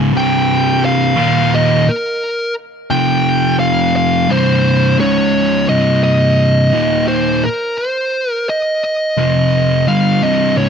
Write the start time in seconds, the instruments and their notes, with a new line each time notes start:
Already playing: distorted electric guitar C#2 G#2 C#3
0.13 distorted electric guitar C2 G2 C3
0.17 lead electric guitar G5
0.85 lead electric guitar F5
1.16 distorted electric guitar D#2 A#2 D#3
1.55 lead electric guitar D#5
1.89 lead electric guitar A#4
2.90 distorted electric guitar F2 C3 F3, lead electric guitar G5
3.60 lead electric guitar F5
3.96 lead electric guitar F5
4.29 distorted electric guitar C2 G2 C3, lead electric guitar C5
4.98 distorted electric guitar C#2 G#2 C#3, lead electric guitar C#5
5.68 distorted electric guitar C2 G2 C3, lead electric guitar D#5
6.03 lead electric guitar D#5
6.73 distorted electric guitar D#2 A#2 D#3
7.08 lead electric guitar C5
7.44 lead electric guitar A#4
7.78 lead electric guitar C5
8.32 lead electric guitar A#4
8.49 lead electric guitar D#5
8.84 lead electric guitar D#5
9.17 distorted electric guitar F2 C3 F3
9.88 distorted electric guitar G2 D3 G3, lead electric guitar F5
10.23 distorted electric guitar C2 G2 C3, lead electric guitar D#5
10.57 distorted electric guitar C#2 G#2 C#3, lead electric guitar C#5